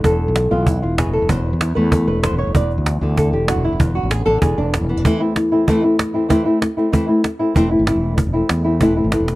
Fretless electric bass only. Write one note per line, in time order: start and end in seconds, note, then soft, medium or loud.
0.04 0.27 E1 medium
0.28 0.50 B1 medium
0.52 0.81 B1 medium
0.83 1.05 E1 medium
1.07 1.21 E1 medium
1.22 1.29 E1 medium
1.30 1.52 E1 medium
1.53 1.75 E2 medium
1.77 2.06 E2 medium
2.08 2.30 E1 loud
2.31 2.46 E1 medium
2.47 2.54 E1 medium
2.55 2.77 E1 loud
2.78 3.00 D2 loud
3.01 3.31 D2 loud
3.33 3.55 E1 loud
3.56 3.71 E1 medium
3.72 3.79 E1 medium
3.80 4.02 E1 loud
4.03 4.26 A1 medium
4.26 4.41 A1 medium
4.42 4.57 E1 medium
4.58 4.80 E1 loud
4.81 4.96 E1 medium
4.97 5.04 E1 medium
7.56 7.78 E1 medium
7.79 7.94 G#1 medium
7.95 8.25 E1 medium
8.27 8.41 E1 medium
8.50 8.80 E2 medium
8.81 9.03 E1 medium
9.04 9.19 G#1 medium
9.20 9.35 E1 medium